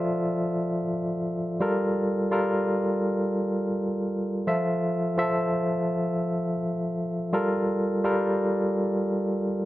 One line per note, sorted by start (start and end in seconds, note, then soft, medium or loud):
0.00 1.64 F3 medium
0.00 1.61 F4 medium
0.00 1.61 A4 medium
0.00 1.64 D5 medium
0.00 1.64 E5 medium
1.60 2.27 G3 medium
1.60 2.28 F4 medium
1.60 2.28 A4 medium
1.60 2.28 A#4 medium
2.31 3.65 G3 medium
2.31 3.65 F4 medium
2.31 3.65 A4 medium
2.31 3.66 A#4 medium
4.47 5.14 F3 medium
4.47 5.14 F4 medium
4.47 5.14 A4 medium
4.47 5.14 E5 medium
5.17 6.51 F3 medium
5.17 6.51 F4 medium
5.17 6.51 A4 medium
5.17 6.52 E5 medium
7.33 7.99 G3 medium
7.33 8.00 F4 medium
7.33 8.00 A4 medium
7.33 8.00 A#4 medium
8.04 9.37 G3 medium
8.04 9.37 F4 medium
8.04 9.37 A4 medium
8.04 9.38 A#4 medium